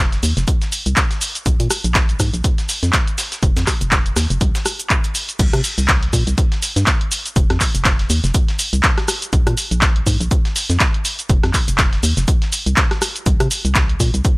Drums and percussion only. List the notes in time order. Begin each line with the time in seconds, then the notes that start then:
0.12 snare, closed hi-hat, cabasa
0.23 open hi-hat, cabasa, shaker
0.37 snare, closed hi-hat, cabasa
0.48 kick, closed hi-hat, cabasa, shaker
0.62 snare, closed hi-hat, cabasa
0.72 open hi-hat, cabasa, shaker
0.86 closed hi-hat, cabasa
0.96 kick, snare, clap, closed hi-hat, cabasa, shaker
1.11 snare, closed hi-hat, cabasa
1.21 open hi-hat, cabasa, shaker
1.35 closed hi-hat, cabasa
1.46 kick, closed hi-hat, cabasa, shaker
1.60 closed hi-hat, cabasa
1.70 cross-stick, open hi-hat, cabasa, shaker
1.84 closed hi-hat, cabasa
1.95 kick, snare, clap, closed hi-hat, cabasa, shaker
2.09 closed hi-hat, cabasa
2.20 kick, cross-stick, open hi-hat, cabasa, shaker
2.34 closed hi-hat, cabasa
2.44 kick, closed hi-hat, cabasa, shaker
2.58 snare, closed hi-hat, cabasa
2.69 snare, open hi-hat, cabasa, shaker
2.83 snare, closed hi-hat, cabasa
2.93 kick, snare, clap, closed hi-hat, cabasa, shaker
3.07 closed hi-hat, cabasa
3.18 snare, open hi-hat, cabasa, shaker
3.32 snare, closed hi-hat, cabasa
3.43 kick, closed hi-hat, cabasa, shaker
3.57 snare, closed hi-hat, cabasa, shaker
3.67 kick, cross-stick, snare, clap, open hi-hat, cabasa
3.81 closed hi-hat, cabasa, shaker
3.91 kick, snare, clap, closed hi-hat, cabasa, shaker
4.06 closed hi-hat, cabasa
4.16 cross-stick, snare, open hi-hat, cabasa, shaker
4.30 closed hi-hat, cabasa
4.41 kick, closed hi-hat, cabasa, shaker
4.55 snare, closed hi-hat, cabasa, shaker
4.66 cross-stick, open hi-hat, cabasa
4.80 closed hi-hat, cabasa, shaker
4.90 kick, clap, closed hi-hat, cabasa
5.04 closed hi-hat, cabasa, shaker
5.15 open hi-hat, cabasa, shaker
5.29 closed hi-hat, cabasa
5.39 kick, closed hi-hat, crash, cabasa, shaker
5.53 cross-stick, closed hi-hat
5.64 open hi-hat, cabasa, shaker
5.78 closed hi-hat, cabasa
5.88 kick, snare, clap, closed hi-hat, cabasa, shaker
6.03 closed hi-hat
6.13 kick, open hi-hat, cabasa, shaker
6.27 closed hi-hat, cabasa
6.38 kick, closed hi-hat, cabasa, shaker
6.52 snare, closed hi-hat
6.62 snare, open hi-hat, cabasa, shaker
6.76 snare, closed hi-hat, cabasa
6.87 kick, snare, clap, closed hi-hat, cabasa, shaker
7.01 closed hi-hat
7.12 open hi-hat, cabasa, shaker
7.26 closed hi-hat, cabasa
7.36 kick, closed hi-hat, cabasa, shaker
7.50 cross-stick, snare, closed hi-hat
7.60 kick, clap, open hi-hat, cabasa, shaker
7.75 closed hi-hat, cabasa
7.85 kick, snare, clap, closed hi-hat, cabasa, shaker
7.99 snare, closed hi-hat
8.10 open hi-hat, cabasa, shaker
8.24 snare, closed hi-hat, cabasa
8.34 kick, closed hi-hat, cabasa, shaker
8.48 snare, closed hi-hat
8.59 open hi-hat, cabasa, shaker
8.73 closed hi-hat, cabasa
8.83 kick, snare, clap, closed hi-hat, cabasa, shaker
8.98 cross-stick, snare, closed hi-hat
9.08 cross-stick, open hi-hat, cabasa, shaker
9.22 closed hi-hat, cabasa
9.33 kick, closed hi-hat, cabasa, shaker
9.47 cross-stick, closed hi-hat
9.57 open hi-hat, cabasa, shaker
9.71 closed hi-hat, cabasa
9.82 kick, snare, clap, closed hi-hat, cabasa, shaker
9.96 closed hi-hat
10.07 kick, open hi-hat, cabasa, shaker
10.21 closed hi-hat, cabasa
10.31 kick, closed hi-hat, cabasa, shaker
10.45 snare, closed hi-hat
10.56 snare, open hi-hat, cabasa, shaker
10.70 snare, closed hi-hat, cabasa
10.80 kick, snare, clap, closed hi-hat, cabasa, shaker
10.94 closed hi-hat
11.05 open hi-hat, cabasa, shaker
11.19 closed hi-hat, cabasa
11.30 kick, closed hi-hat, cabasa, shaker
11.43 cross-stick, snare, closed hi-hat
11.54 kick, clap, open hi-hat, cabasa, shaker
11.68 closed hi-hat, cabasa
11.78 kick, snare, clap, closed hi-hat, cabasa, shaker
11.93 snare, closed hi-hat
12.03 open hi-hat, cabasa, shaker
12.17 snare, closed hi-hat, cabasa
12.28 kick, closed hi-hat, cabasa, shaker
12.42 snare, closed hi-hat
12.52 open hi-hat, cabasa, shaker
12.66 closed hi-hat, cabasa
12.77 kick, snare, clap, closed hi-hat, cabasa, shaker
12.91 cross-stick, snare, closed hi-hat
13.02 cross-stick, open hi-hat, cabasa, shaker
13.16 closed hi-hat, cabasa
13.26 kick, closed hi-hat, cabasa, shaker
13.40 cross-stick, closed hi-hat
13.51 open hi-hat, cabasa, shaker
13.65 closed hi-hat, cabasa
13.75 kick, snare, clap, closed hi-hat, cabasa, shaker
13.89 closed hi-hat
14.00 kick, open hi-hat, cabasa, shaker
14.14 closed hi-hat, cabasa
14.25 kick, closed hi-hat, cabasa, shaker